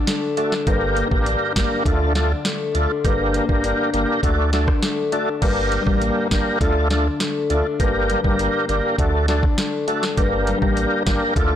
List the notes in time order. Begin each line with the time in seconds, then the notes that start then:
Already playing: D3 D4
0.07 A3, snare, closed hi-hat
0.37 A3 D4 F#4 A4, closed hi-hat
0.52 snare
0.67 G1 G2 A#3 D4 G4 A#4, kick, closed hi-hat
0.97 A#3, closed hi-hat
1.11 A1 A#3 D4 G4 A#4, kick
1.26 D4, closed hi-hat
1.56 G1 A#3 D4 G4 A#4, kick, snare, closed hi-hat
1.85 D2 D3 A3 D4 F4 A4, kick, closed hi-hat
2.15 A3 D4 F4 A4, snare, closed hi-hat
2.45 A3, snare, closed hi-hat
2.74 D2 A3 D4 F4 A4, closed hi-hat
3.04 G1 G2 A#3 D4 G4 A#4, kick, closed hi-hat
3.34 A#3, closed hi-hat
3.49 G1 A#3 D4 G4 A#4, kick
3.64 D4, closed hi-hat
3.93 G1 A#3 D4 G4 A#4, closed hi-hat
4.23 D2 D3 A3 D4 F#4 A4, kick, closed hi-hat
4.53 A3 D4 F#4 A4, snare, closed hi-hat
4.68 kick, cross-stick
4.83 A3, snare, closed hi-hat
5.12 A3 D4 F#4 A4, closed hi-hat
5.42 G1 G2 A#3 D4 G4 A#4, kick, closed hi-hat, crash
5.72 G3, closed hi-hat
5.86 A1 A#3 D4 G4 A#4, kick
6.01 A#3, closed hi-hat
6.31 G1 A#3 D4 G4 A#4, kick, snare, closed hi-hat
6.60 D2 D3 A3 D4 F4 A4, kick, closed hi-hat
6.90 A3 D4 F4 A4, snare, closed hi-hat
7.20 A3, snare, closed hi-hat
7.50 D2 A3 D4 F4 A4, closed hi-hat
7.79 G1 G2 A#3 D4 G4 A#4, kick, closed hi-hat
8.10 G3, closed hi-hat
8.24 G1 A#3 D4 G4 A#4, kick
8.39 A#3, closed hi-hat
8.69 G1 A#3 D4 G4 A#4, closed hi-hat
8.98 D2 D3 A3 D4 F#4 A4, kick, closed hi-hat
9.28 A3 D4 F#4 A4, snare, closed hi-hat
9.43 kick
9.58 A3, snare, closed hi-hat
9.87 A3 D4 F#4 A4, closed hi-hat
10.03 snare
10.17 G1 G2 A#3 D4 G4 A#4, kick, closed hi-hat
10.47 G3, closed hi-hat
10.62 A1 A#3 D4 G4 A#4, kick
10.77 A#3, closed hi-hat
11.06 G1 A#3 D4 G4 A#4, kick, snare, closed hi-hat
11.36 D2 D3 A3 D4 F4 A4, kick, closed hi-hat